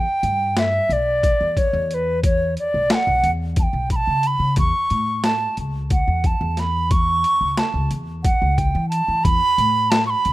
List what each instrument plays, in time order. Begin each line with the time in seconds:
Already playing: flute G5
0.23 upright bass G2, closed hi-hat
0.57 flute E5, snare, closed hi-hat
0.89 upright bass B1, flute D5, closed hi-hat
1.23 kick, closed hi-hat
1.41 upright bass E2
1.57 flute C#5, kick, closed hi-hat
1.73 upright bass E2
1.91 flute B4 C#5, closed hi-hat
2.23 flute C#5, kick, closed hi-hat
2.57 flute D5, closed hi-hat
2.74 upright bass B1
2.90 flute A5, snare, closed hi-hat
2.95 flute F#5
3.07 upright bass B1
3.24 upright bass E2, closed hi-hat
3.56 flute A5, kick, closed hi-hat
3.63 flute G5
3.73 upright bass B1
3.90 flute B5, kick, closed hi-hat
3.96 flute A5
4.07 upright bass C#3
4.23 flute B5, closed hi-hat
4.39 upright bass C#3
4.56 upright bass E2, flute C#6, kick, closed hi-hat
4.90 upright bass A2, closed hi-hat
5.24 flute A5, snare, closed hi-hat
5.57 upright bass C#2, closed hi-hat
5.90 flute F#5, kick, closed hi-hat
6.08 upright bass E2
6.24 flute A5, kick, closed hi-hat
6.41 upright bass E2
6.57 flute B5, snare, closed hi-hat
6.91 flute C#6, kick, closed hi-hat
7.24 closed hi-hat
7.41 upright bass C#2
7.57 flute A5, snare, closed hi-hat
7.74 upright bass C#2
7.91 upright bass E2, closed hi-hat
8.24 flute F#5, kick, closed hi-hat
8.42 upright bass C#2
8.58 flute G5, kick, closed hi-hat
8.75 upright bass E3
8.89 flute A5, closed hi-hat
9.08 upright bass E3
9.24 upright bass E2, flute B5, kick, closed hi-hat
9.58 upright bass A2, closed hi-hat
9.91 flute A5, snare, closed hi-hat
10.06 flute B5 C#6
10.25 upright bass C#2, closed hi-hat